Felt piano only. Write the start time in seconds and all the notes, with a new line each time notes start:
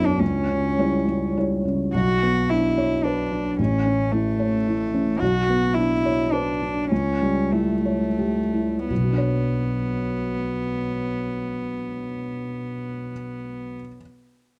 Already playing: B1 F#2 B3 D4 C#5
0.20 C#2
0.50 C#3
0.79 G3 E4 C#5
1.08 G3
1.37 G3 E4 C#5
1.65 C#3
1.94 B1
2.23 B3
2.51 D4
2.78 C#5
3.05 B4
3.32 D4
3.59 A1
3.86 C#4
4.13 E4
4.39 C#5
4.68 E4
4.94 C#4
5.22 B1
5.50 B3
5.77 D4
6.06 C#5
6.33 B4
6.62 D4
6.92 C#2
7.22 G3
7.53 E4
7.86 C#5
8.19 G4
8.53 E4
8.90 B1
8.97 B2
9.04 F#3
9.11 D4
9.18 C#5